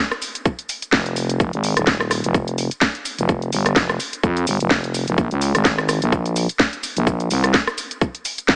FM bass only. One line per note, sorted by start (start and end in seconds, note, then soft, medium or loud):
0.93 1.38 F1 medium
1.40 1.51 F1 medium
1.53 1.75 G#1 medium
1.77 2.22 D#1 loud
2.24 2.69 F1 medium
3.18 3.51 F1 loud
3.52 3.74 G1 loud
3.76 3.98 F1 medium
4.23 4.45 F2 loud
4.47 4.58 G1 loud
4.60 5.05 F1 loud
5.07 5.16 F1 medium
5.18 5.29 A#1 medium
5.31 5.53 C#2 loud
5.55 6.00 G#1 loud
6.02 6.47 A#1 loud
6.97 7.29 A#1 loud
7.30 7.52 C2 loud
8.49 8.56 A#1 loud